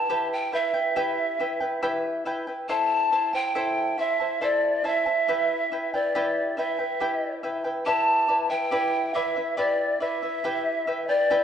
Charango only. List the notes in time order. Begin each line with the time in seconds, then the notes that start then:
0.09 E4 G4 B4 E5 G5
0.52 E4 B4 E5 G5
0.74 E4 B4 G5
0.96 E4 G4 B4 E5 G5
1.40 E4 B4 E5 G5
1.60 E4 B4 G5
1.82 E4 G4 B4 E5 G5
2.25 E4 B4 E5 G5
2.47 E4 B4 G5
2.69 E4 A4 C5 E5 A5
3.11 E4 C5 E5 A5
3.33 E4 C5 A5
3.55 E4 A4 C5 E5 A5
3.98 E4 C5 E5 A5
4.20 E4 C5 A5
4.41 E4 A4 C5 E5 A5
4.84 E4 C5 E5 A5
5.06 E4 C5 A5
5.28 E4 G4 B4 E5 G5
5.72 E4 B4 E5 G5
5.94 E4 B4 G5
6.15 E4 G4 B4 E5 G5
6.57 E4 B4 E5 G5
6.79 E4 B4 G5
7.00 E4 G4 B4 E5 G5
7.43 E4 B4 E5 G5
7.64 E4 B4 G5
7.86 E4 G4 B4 D5 E5
8.28 E4 B4 D5 E5
8.50 E4 B4 E5
8.71 E4 G4 B4 D5 E5
9.15 E4 B4 D5 E5
9.36 E4 B4 E5
9.57 E4 G4 B4 D5 E5
10.00 E4 B4 D5 E5
10.22 E4 B4 E5
10.44 E4 G4 B4 E5 G5
10.87 E4 B4 E5 G5
11.09 E4 B4 G5
11.30 E4 G4 B4 E5 G5